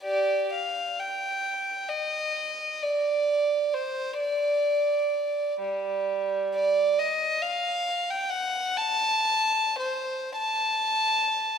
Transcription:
0, 0, Header, 1, 2, 480
1, 0, Start_track
1, 0, Tempo, 956938
1, 23, Time_signature, 3, 2, 24, 8
1, 502, Tempo, 910470
1, 2422, Tempo, 956938
1, 3382, Tempo, 883652
1, 4342, Tempo, 940439
1, 4822, Tempo, 1121495
1, 5302, Tempo, 1260504
1, 5757, End_track
2, 0, Start_track
2, 0, Title_t, "Violin"
2, 0, Program_c, 0, 40
2, 19, Note_on_c, 0, 67, 32
2, 20, Note_on_c, 0, 74, 41
2, 249, Note_off_c, 0, 67, 0
2, 249, Note_off_c, 0, 74, 0
2, 267, Note_on_c, 0, 77, 43
2, 496, Note_off_c, 0, 77, 0
2, 496, Note_on_c, 0, 79, 42
2, 972, Note_on_c, 0, 75, 46
2, 976, Note_off_c, 0, 79, 0
2, 1466, Note_on_c, 0, 74, 40
2, 1469, Note_off_c, 0, 75, 0
2, 1945, Note_on_c, 0, 72, 47
2, 1950, Note_off_c, 0, 74, 0
2, 2185, Note_off_c, 0, 72, 0
2, 2188, Note_on_c, 0, 74, 46
2, 2896, Note_off_c, 0, 74, 0
2, 2910, Note_on_c, 0, 55, 42
2, 3371, Note_off_c, 0, 55, 0
2, 3379, Note_on_c, 0, 74, 53
2, 3617, Note_on_c, 0, 75, 52
2, 3622, Note_off_c, 0, 74, 0
2, 3854, Note_on_c, 0, 77, 57
2, 3860, Note_off_c, 0, 75, 0
2, 4215, Note_off_c, 0, 77, 0
2, 4221, Note_on_c, 0, 79, 55
2, 4330, Note_on_c, 0, 78, 64
2, 4342, Note_off_c, 0, 79, 0
2, 4568, Note_on_c, 0, 81, 71
2, 4571, Note_off_c, 0, 78, 0
2, 5049, Note_off_c, 0, 81, 0
2, 5049, Note_on_c, 0, 72, 50
2, 5294, Note_off_c, 0, 72, 0
2, 5298, Note_on_c, 0, 81, 64
2, 5757, Note_off_c, 0, 81, 0
2, 5757, End_track
0, 0, End_of_file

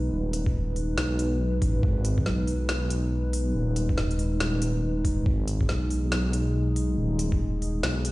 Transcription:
0, 0, Header, 1, 4, 480
1, 0, Start_track
1, 0, Key_signature, 5, "minor"
1, 0, Tempo, 428571
1, 132, Time_signature, 4, 2, 24, 8
1, 9091, End_track
2, 0, Start_track
2, 0, Title_t, "Analog synth pad"
2, 0, Program_c, 0, 89
2, 0, Note_on_c, 0, 56, 80
2, 0, Note_on_c, 0, 63, 73
2, 0, Note_on_c, 0, 71, 93
2, 5878, Note_off_c, 0, 71, 0
2, 5891, Note_on_c, 0, 68, 89
2, 9091, Note_off_c, 0, 56, 0
2, 9091, Note_off_c, 0, 63, 0
2, 9091, Note_off_c, 0, 68, 0
2, 9091, End_track
3, 0, Start_track
3, 0, Title_t, "Detuned saw bass"
3, 0, Program_c, 1, 39
3, 0, Note_on_c, 1, 35, 91
3, 118, Note_off_c, 1, 35, 0
3, 133, Note_on_c, 1, 27, 100
3, 1078, Note_off_c, 1, 27, 0
3, 1093, Note_on_c, 1, 35, 99
3, 1798, Note_off_c, 1, 35, 0
3, 1812, Note_on_c, 1, 33, 103
3, 2037, Note_off_c, 1, 33, 0
3, 2053, Note_on_c, 1, 32, 100
3, 2518, Note_off_c, 1, 32, 0
3, 2532, Note_on_c, 1, 35, 95
3, 3957, Note_off_c, 1, 35, 0
3, 3972, Note_on_c, 1, 27, 100
3, 4917, Note_off_c, 1, 27, 0
3, 4934, Note_on_c, 1, 27, 96
3, 5878, Note_off_c, 1, 27, 0
3, 5892, Note_on_c, 1, 32, 100
3, 6357, Note_off_c, 1, 32, 0
3, 6373, Note_on_c, 1, 35, 96
3, 7798, Note_off_c, 1, 35, 0
3, 7814, Note_on_c, 1, 27, 99
3, 8758, Note_off_c, 1, 27, 0
3, 8773, Note_on_c, 1, 35, 96
3, 9091, Note_off_c, 1, 35, 0
3, 9091, End_track
4, 0, Start_track
4, 0, Title_t, "Drums"
4, 373, Note_on_c, 9, 42, 77
4, 485, Note_off_c, 9, 42, 0
4, 520, Note_on_c, 9, 36, 62
4, 632, Note_off_c, 9, 36, 0
4, 853, Note_on_c, 9, 46, 58
4, 965, Note_off_c, 9, 46, 0
4, 1093, Note_on_c, 9, 38, 116
4, 1205, Note_off_c, 9, 38, 0
4, 1333, Note_on_c, 9, 42, 76
4, 1445, Note_off_c, 9, 42, 0
4, 1812, Note_on_c, 9, 36, 62
4, 1813, Note_on_c, 9, 46, 95
4, 1924, Note_off_c, 9, 36, 0
4, 1925, Note_off_c, 9, 46, 0
4, 2052, Note_on_c, 9, 36, 117
4, 2164, Note_off_c, 9, 36, 0
4, 2292, Note_on_c, 9, 42, 79
4, 2404, Note_off_c, 9, 42, 0
4, 2439, Note_on_c, 9, 36, 61
4, 2532, Note_on_c, 9, 38, 59
4, 2551, Note_off_c, 9, 36, 0
4, 2644, Note_off_c, 9, 38, 0
4, 2772, Note_on_c, 9, 46, 63
4, 2884, Note_off_c, 9, 46, 0
4, 3012, Note_on_c, 9, 38, 116
4, 3124, Note_off_c, 9, 38, 0
4, 3253, Note_on_c, 9, 42, 82
4, 3365, Note_off_c, 9, 42, 0
4, 3733, Note_on_c, 9, 46, 100
4, 3845, Note_off_c, 9, 46, 0
4, 4213, Note_on_c, 9, 42, 82
4, 4325, Note_off_c, 9, 42, 0
4, 4359, Note_on_c, 9, 36, 59
4, 4453, Note_on_c, 9, 38, 61
4, 4471, Note_off_c, 9, 36, 0
4, 4565, Note_off_c, 9, 38, 0
4, 4600, Note_on_c, 9, 42, 39
4, 4693, Note_on_c, 9, 46, 64
4, 4712, Note_off_c, 9, 42, 0
4, 4805, Note_off_c, 9, 46, 0
4, 4933, Note_on_c, 9, 38, 120
4, 5045, Note_off_c, 9, 38, 0
4, 5171, Note_on_c, 9, 42, 82
4, 5283, Note_off_c, 9, 42, 0
4, 5652, Note_on_c, 9, 36, 60
4, 5653, Note_on_c, 9, 46, 98
4, 5764, Note_off_c, 9, 36, 0
4, 5765, Note_off_c, 9, 46, 0
4, 5892, Note_on_c, 9, 36, 116
4, 6004, Note_off_c, 9, 36, 0
4, 6133, Note_on_c, 9, 42, 84
4, 6245, Note_off_c, 9, 42, 0
4, 6280, Note_on_c, 9, 36, 65
4, 6373, Note_on_c, 9, 38, 62
4, 6392, Note_off_c, 9, 36, 0
4, 6485, Note_off_c, 9, 38, 0
4, 6614, Note_on_c, 9, 46, 65
4, 6726, Note_off_c, 9, 46, 0
4, 6853, Note_on_c, 9, 38, 120
4, 6965, Note_off_c, 9, 38, 0
4, 7093, Note_on_c, 9, 42, 85
4, 7205, Note_off_c, 9, 42, 0
4, 7573, Note_on_c, 9, 46, 104
4, 7685, Note_off_c, 9, 46, 0
4, 8054, Note_on_c, 9, 42, 82
4, 8166, Note_off_c, 9, 42, 0
4, 8200, Note_on_c, 9, 36, 66
4, 8312, Note_off_c, 9, 36, 0
4, 8535, Note_on_c, 9, 46, 59
4, 8647, Note_off_c, 9, 46, 0
4, 8774, Note_on_c, 9, 38, 127
4, 8886, Note_off_c, 9, 38, 0
4, 9014, Note_on_c, 9, 42, 83
4, 9091, Note_off_c, 9, 42, 0
4, 9091, End_track
0, 0, End_of_file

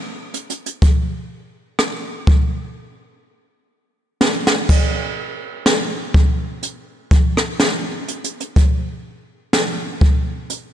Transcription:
0, 0, Header, 1, 2, 480
1, 0, Start_track
1, 0, Tempo, 967742
1, 407, Time_signature, 4, 2, 24, 8
1, 5323, End_track
2, 0, Start_track
2, 0, Title_t, "Drums"
2, 168, Note_on_c, 9, 42, 62
2, 217, Note_off_c, 9, 42, 0
2, 247, Note_on_c, 9, 42, 63
2, 297, Note_off_c, 9, 42, 0
2, 328, Note_on_c, 9, 42, 60
2, 377, Note_off_c, 9, 42, 0
2, 407, Note_on_c, 9, 36, 105
2, 407, Note_on_c, 9, 42, 73
2, 457, Note_off_c, 9, 36, 0
2, 457, Note_off_c, 9, 42, 0
2, 887, Note_on_c, 9, 37, 120
2, 887, Note_on_c, 9, 42, 69
2, 937, Note_off_c, 9, 37, 0
2, 937, Note_off_c, 9, 42, 0
2, 1127, Note_on_c, 9, 36, 105
2, 1177, Note_off_c, 9, 36, 0
2, 2088, Note_on_c, 9, 38, 110
2, 2137, Note_off_c, 9, 38, 0
2, 2217, Note_on_c, 9, 38, 97
2, 2266, Note_off_c, 9, 38, 0
2, 2327, Note_on_c, 9, 36, 105
2, 2327, Note_on_c, 9, 49, 98
2, 2376, Note_off_c, 9, 49, 0
2, 2377, Note_off_c, 9, 36, 0
2, 2807, Note_on_c, 9, 38, 123
2, 2807, Note_on_c, 9, 42, 75
2, 2856, Note_off_c, 9, 38, 0
2, 2856, Note_off_c, 9, 42, 0
2, 3047, Note_on_c, 9, 36, 105
2, 3097, Note_off_c, 9, 36, 0
2, 3287, Note_on_c, 9, 42, 72
2, 3336, Note_off_c, 9, 42, 0
2, 3527, Note_on_c, 9, 36, 99
2, 3528, Note_on_c, 9, 42, 67
2, 3577, Note_off_c, 9, 36, 0
2, 3577, Note_off_c, 9, 42, 0
2, 3657, Note_on_c, 9, 37, 87
2, 3707, Note_off_c, 9, 37, 0
2, 3768, Note_on_c, 9, 38, 100
2, 3768, Note_on_c, 9, 42, 54
2, 3817, Note_off_c, 9, 38, 0
2, 3818, Note_off_c, 9, 42, 0
2, 4009, Note_on_c, 9, 42, 64
2, 4058, Note_off_c, 9, 42, 0
2, 4088, Note_on_c, 9, 42, 62
2, 4138, Note_off_c, 9, 42, 0
2, 4168, Note_on_c, 9, 42, 61
2, 4218, Note_off_c, 9, 42, 0
2, 4247, Note_on_c, 9, 36, 105
2, 4248, Note_on_c, 9, 42, 74
2, 4297, Note_off_c, 9, 36, 0
2, 4297, Note_off_c, 9, 42, 0
2, 4728, Note_on_c, 9, 38, 118
2, 4728, Note_on_c, 9, 42, 70
2, 4777, Note_off_c, 9, 38, 0
2, 4777, Note_off_c, 9, 42, 0
2, 4967, Note_on_c, 9, 36, 108
2, 5016, Note_off_c, 9, 36, 0
2, 5207, Note_on_c, 9, 42, 74
2, 5257, Note_off_c, 9, 42, 0
2, 5323, End_track
0, 0, End_of_file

